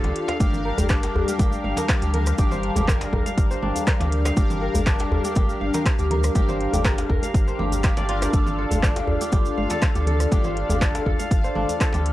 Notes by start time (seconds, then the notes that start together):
Already playing: D4 F4 G4 A4 C5 D5 F5
0.04 D2 G4, closed hi-hat, muted conga, djembe slap, low conga
0.16 closed hi-hat
0.28 F5, cross-stick, closed hi-hat, djembe slap
0.40 G1 G3 D4 G4 A#4 F5 A5, kick, closed hi-hat, muted conga, high conga, cabasa
0.53 low conga, cabasa
0.65 A#4
0.77 G1, closed hi-hat, muted conga, high conga, djembe bass, cabasa
0.89 D4, kick, cross-stick, clap, cabasa
1.03 G4, closed hi-hat, djembe slap, cabasa
1.15 G1, djembe bass
1.28 G4, closed hi-hat, muted conga, cabasa
1.39 G1 G4, kick, closed hi-hat, djembe tone, high conga, cabasa
1.52 cabasa
1.64 G1 F5, muted conga, high conga
1.77 A#4, closed hi-hat, djembe slap, low conga, cabasa
1.89 kick, cross-stick, clap, closed hi-hat, cabasa
2.02 D2 G4, closed hi-hat, muted conga, cabasa
2.14 D4 G4 A#4 F5, closed hi-hat, djembe tone, low conga
2.26 cross-stick, closed hi-hat, cabasa
2.38 G1 D4 G4 A#4 F5, kick, closed hi-hat, muted conga, high conga, cabasa
2.51 C5, low conga, cabasa
2.63 closed hi-hat
2.76 G1 G4, closed hi-hat, muted conga, high conga, djembe bass, low conga, cabasa
2.88 A#4, kick, cross-stick, clap, djembe tone, cabasa
3.01 closed hi-hat, djembe slap, cabasa
3.13 G1 A#4, kick, djembe bass
3.26 F5, closed hi-hat, muted conga, cabasa
3.38 G1 D4 G4 A#4 F5, kick, closed hi-hat, cabasa
3.51 C5, cabasa
3.62 G1 D4, muted conga, high conga, low conga
3.76 closed hi-hat, djembe tone, cabasa
3.87 A#4, kick, cross-stick, clap, closed hi-hat, cabasa
4.00 D2 G4, closed hi-hat, muted conga, djembe slap, low conga, cabasa
4.12 closed hi-hat
4.25 F5, cross-stick, closed hi-hat, djembe slap, cabasa
4.37 G1 D4 G4 A#4 F5, kick, closed hi-hat, muted conga, high conga, cabasa
4.50 low conga, cabasa
4.62 A#4
4.74 G1, closed hi-hat, muted conga, high conga, djembe bass, cabasa
4.86 D4, kick, cross-stick, clap, cabasa
4.99 G4, closed hi-hat, djembe slap, cabasa
5.11 G1, djembe bass
5.24 G4, closed hi-hat, muted conga, cabasa
5.35 G1 G4, kick, closed hi-hat, high conga, djembe tone, cabasa
5.49 cabasa
5.60 G1 F5, muted conga, high conga
5.74 A#4, closed hi-hat, djembe slap, low conga, cabasa
5.86 kick, cross-stick, clap, closed hi-hat, cabasa
5.99 D2 G4, closed hi-hat, muted conga, cabasa
6.11 D4 G4 A#4 F5, closed hi-hat, djembe tone, low conga
6.23 cross-stick, closed hi-hat, cabasa
6.35 G1 D4 G4 A#4 F5, kick, closed hi-hat, muted conga, high conga, cabasa
6.49 C5, low conga, cabasa
6.61 closed hi-hat
6.73 G1 G4, closed hi-hat, muted conga, high conga, low conga, djembe bass, cabasa
6.85 A#4, kick, cross-stick, clap, djembe tone, cabasa
6.98 closed hi-hat, djembe slap, cabasa
7.10 G1 A#4, kick, djembe bass
7.22 F5, closed hi-hat, muted conga, cabasa
7.34 G1 D4 G4 A#4 F5, kick, closed hi-hat, cabasa
7.48 C5, cabasa
7.59 G1 G4, muted conga, djembe tone, high conga, low conga
7.72 closed hi-hat, djembe tone, cabasa
7.83 D4 G4 A#4 F5, kick, cross-stick, clap, closed hi-hat, cabasa
7.97 G1 D4 G4 A#4 D5 F5, closed hi-hat, djembe slap, muted conga, low conga, cabasa
8.09 D4 F4 G4 A#4 F5, closed hi-hat
8.22 D5, cross-stick, closed hi-hat, djembe slap, cabasa
8.33 G1 D4 F4 G4 A4 D5 F5, kick, closed hi-hat, muted conga, high conga, cabasa
8.46 low conga, cabasa
8.58 A4
8.71 G1, closed hi-hat, muted conga, high conga, djembe bass, cabasa
8.83 D4, kick, cross-stick, clap, cabasa
8.96 G4, closed hi-hat, djembe slap, cabasa
9.07 G1, djembe bass
9.21 G4, closed hi-hat, muted conga, cabasa
9.32 G1 G4, kick, closed hi-hat, high conga, djembe tone, cabasa
9.45 cabasa
9.57 G1 F5, muted conga, high conga
9.70 A4, closed hi-hat, djembe slap, low conga, cabasa
9.82 kick, cross-stick, clap, closed hi-hat, cabasa
9.95 D2 G4, closed hi-hat, muted conga, cabasa
10.07 D4 F4 A4 F5, closed hi-hat, djembe tone, low conga
10.20 cross-stick, closed hi-hat, cabasa
10.32 G1 D4 F4 G4 A4 F5, kick, closed hi-hat, muted conga, high conga, cabasa
10.44 C5, low conga, cabasa
10.57 closed hi-hat
10.69 G1 G4, closed hi-hat, muted conga, high conga, djembe bass, low conga, cabasa
10.81 A4, kick, cross-stick, clap, djembe tone, cabasa
10.95 closed hi-hat, djembe slap, cabasa
11.06 G1 A4, kick, djembe bass
11.19 F5, closed hi-hat, muted conga, cabasa
11.31 G1 D4 F4 A4 F5, kick, closed hi-hat, cabasa
11.44 C5, cabasa
11.55 G1 D4, muted conga, high conga, low conga
11.69 closed hi-hat, djembe tone, cabasa
11.81 A4, kick, cross-stick, clap, closed hi-hat, cabasa
11.93 D2 G4, closed hi-hat, djembe slap, muted conga, low conga, cabasa
12.06 closed hi-hat